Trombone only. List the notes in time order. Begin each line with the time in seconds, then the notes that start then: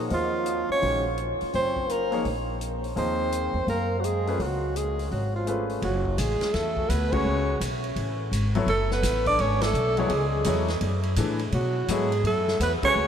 0.10 F3
0.70 C#4
1.53 C4
1.88 A#3
2.97 C4
3.68 A#3
3.99 F#3
4.04 G#3
4.40 F#3
4.75 G#3
5.11 F#3
5.35 F3
5.83 F#3
6.18 G#3
6.53 A3
6.88 B3
7.11 C#4
8.68 A3
8.91 B3
9.28 D4
9.40 C#4
9.63 A3
9.98 G#3
11.52 F#3
11.89 G#3
12.25 A3
12.61 B3
12.85 C#4